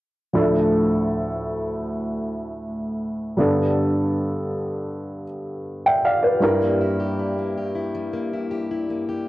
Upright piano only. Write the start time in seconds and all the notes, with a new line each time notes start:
0.33 D2 A2 F3 D4 A4
3.37 G2 D3 G3 B3 A4
5.86 E5 G5
6.05 D5 F5
6.23 B4 D5
6.40 G2 G3 E4 A#4